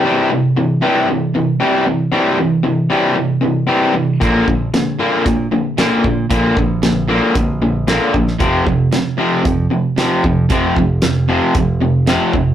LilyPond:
<<
  \new Staff \with { instrumentName = "Distorted electric guitar" } { \clef bass \time 4/4 \key c \major \tempo 4 = 115 <c e g>8 <c e>8 <c e>8 <c e g>8 <c e>8 <c e>8 <c e g>8 <c e>8 | <c e g>8 <c e>8 <c e>8 <c e g>8 <c e>8 <c e>8 <c e g>8 <c e>8 | <bes, d bes>8 <bes, d>8 <bes, d>8 <bes, d bes>8 <bes, d>8 <bes, d>8 <bes, d bes>8 <bes, d>8 | <bes, d bes>8 <bes, d>8 <bes, d>8 <bes, d bes>8 <bes, d>8 <bes, d>8 <bes, d bes>8 <bes, d>8 |
<f, c f>8 <f, c>8 <f, c>8 <f, c f>8 <f, c>8 <f, c>8 <f, c f>8 <f, c>8 | <f, c f>8 <f, c>8 <f, c>8 <f, c f>8 <f, c>8 <f, c>8 <f, c f>8 <f, c>8 | }
  \new Staff \with { instrumentName = "Overdriven electric guitar" } { \clef bass \time 4/4 \key c \major <c e g>8 <c e>8 <c e>8 <c e g>8 <c e>8 <c e>8 <c e g>8 <c e>8 | <c e g>8 <c e>8 <c e>8 <c e g>8 <c e>8 <c e>8 <c e g>8 <c e>8 | <bes, d bes>8 <bes, d>8 <bes, d>8 <bes, d bes>8 <bes, d>8 <bes, d>8 <bes, d bes>8 <bes, d>8 | <bes, d bes>8 <bes, d>8 <bes, d>8 <bes, d bes>8 <bes, d>8 <bes, d>8 <bes, d bes>8 <bes, d>8 |
<f, c f>8 <f, c>8 <f, c>8 <f, c f>8 <f, c>8 <f, c>8 <f, c f>8 <f, c>8 | <f, c f>8 <f, c>8 <f, c>8 <f, c f>8 <f, c>8 <f, c>8 <f, c f>8 <f, c>8 | }
  \new Staff \with { instrumentName = "Picked electric bass" } { \clef bass \time 4/4 \key c \major r1 | r1 | bes,,8 bes,,8 r4 bes,8 r4 bes,8 | bes,,8 bes,,4. bes,,4. bes,,8 |
f,,8 f,,8 r4 f,8 r4 f,8 | f,,8 f,,4. f,,4. f,,8 | }
  \new DrumStaff \with { instrumentName = "Drums" } \drummode { \time 4/4 r4 r4 r4 r4 | r4 r4 r4 r4 | <hh bd>8 bd8 <hh sn>4 <hh bd>4 <hh sn>8 bd8 | <hh bd>8 bd8 <hh sn>4 <hh bd>4 <hh sn>8 bd16 sn16 |
<hh bd>8 bd8 <hh sn>4 <hh bd>4 <hh sn>8 bd8 | <hh bd>8 bd8 <hh sn>4 <hh bd>4 <hh sn>8 bd8 | }
>>